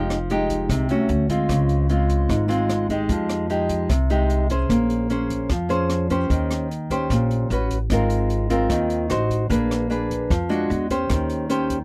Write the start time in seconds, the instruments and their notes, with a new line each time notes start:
Already playing: upright bass F1, nylon-string guitar F3 G#3 D#4 G4
0.10 cross-stick, closed hi-hat
0.30 nylon-string guitar G#3 D#4 G4, closed hi-hat
0.49 kick, closed hi-hat
0.69 upright bass C2, nylon-string guitar C3, kick, cross-stick, closed hi-hat
0.89 nylon-string guitar A3 C#4 F#4, closed hi-hat
1.09 upright bass D2, closed hi-hat
1.29 nylon-string guitar G#3 C4 F4, kick, closed hi-hat
1.49 upright bass C#2, nylon-string guitar C#3, kick, cross-stick, closed hi-hat
1.69 closed hi-hat
1.89 nylon-string guitar G#3 C4 F4, closed hi-hat
2.09 kick, closed hi-hat
2.29 upright bass G#1, nylon-string guitar G#2, kick, cross-stick, closed hi-hat
2.48 nylon-string guitar G#3 C4 F4, closed hi-hat
2.69 cross-stick, closed hi-hat
2.89 nylon-string guitar G#3 D#4 G4, kick, closed hi-hat
3.09 upright bass F2, nylon-string guitar F3, kick, closed hi-hat
3.29 cross-stick, closed hi-hat
3.50 nylon-string guitar G#3 D#4 G4, closed hi-hat
3.69 kick, closed hi-hat
3.90 upright bass C2, nylon-string guitar C3, kick, cross-stick, closed hi-hat
4.10 nylon-string guitar G#3 D#4 G4, closed hi-hat
4.30 closed hi-hat
4.50 nylon-string guitar C#4 G#4 C5, kick, closed hi-hat
4.69 upright bass A#1, nylon-string guitar A#3, kick, cross-stick, closed hi-hat
4.90 closed hi-hat
5.10 nylon-string guitar C#4 G#4 C5, closed hi-hat
5.30 kick, closed hi-hat
5.50 upright bass F2, nylon-string guitar F3, kick, cross-stick, closed hi-hat
5.69 nylon-string guitar C#4 G#4 C5, closed hi-hat
5.90 cross-stick, closed hi-hat
6.10 nylon-string guitar C#4 G4 C5, kick, closed hi-hat
6.30 upright bass D#2, nylon-string guitar D#3, kick, closed hi-hat
6.51 cross-stick, closed hi-hat
6.71 closed hi-hat
6.90 nylon-string guitar C#4 G4 C5, kick, closed hi-hat
7.10 upright bass A#1, nylon-string guitar A#2, kick, cross-stick, closed hi-hat
7.31 closed hi-hat
7.50 upright bass A1, nylon-string guitar C#4 F#4 B4, closed hi-hat
7.70 kick, closed hi-hat
7.90 upright bass G#1, nylon-string guitar G#3 C4 F4 A#4, kick, cross-stick, closed hi-hat
8.10 closed hi-hat
8.30 closed hi-hat
8.50 nylon-string guitar C4 F4 A#4, kick, closed hi-hat
8.70 upright bass D#2, nylon-string guitar D#3, kick, cross-stick, closed hi-hat
8.90 closed hi-hat
9.10 upright bass A1, nylon-string guitar D#4 F#4 C5, cross-stick, closed hi-hat
9.30 kick, closed hi-hat
9.49 upright bass A#1, nylon-string guitar A#3 D4 G#4 B4, kick, closed hi-hat
9.71 cross-stick, closed hi-hat
9.90 nylon-string guitar D4 G#4 B4, closed hi-hat
10.10 kick, closed hi-hat
10.30 upright bass F2, nylon-string guitar F3, kick, cross-stick, closed hi-hat
10.49 nylon-string guitar G#3 D4 F#4, closed hi-hat
10.70 upright bass E2, closed hi-hat
10.90 nylon-string guitar C#4 G4 C5, kick, closed hi-hat
11.10 upright bass D#2, nylon-string guitar D#3, kick, cross-stick, closed hi-hat
11.30 closed hi-hat
11.49 nylon-string guitar C#4 G4 C5, closed hi-hat
11.70 kick, closed hi-hat